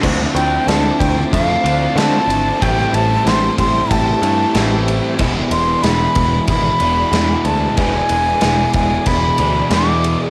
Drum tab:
CC |x-------|--------|--------|--------|
RD |-xxxxxxx|xxxxxxxx|xxxxxxxx|xxxxxxxx|
SD |--o---o-|--o---o-|--o---o-|--o---o-|
BD |o--oo---|o--oo---|o--oo---|o--oo---|